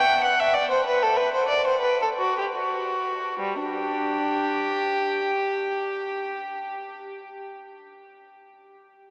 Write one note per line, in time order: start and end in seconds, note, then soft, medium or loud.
0.00 0.23 G5 medium
0.23 0.38 F#5 medium
0.40 0.54 E5 medium
0.54 0.69 D5 medium
0.71 0.85 C5 medium
0.86 1.01 B4 medium
1.03 1.17 A4 medium
1.17 1.33 B4 medium
1.34 1.49 C5 medium
1.49 1.65 D5 medium
1.67 1.83 C5 medium
1.81 1.99 B4 medium
2.02 2.09 A4 soft
2.19 2.36 F#4 medium
2.38 2.45 G4 soft
2.56 3.38 F#4 soft
3.39 3.62 G3 medium
3.62 5.24 D4 soft
3.62 7.01 G4 medium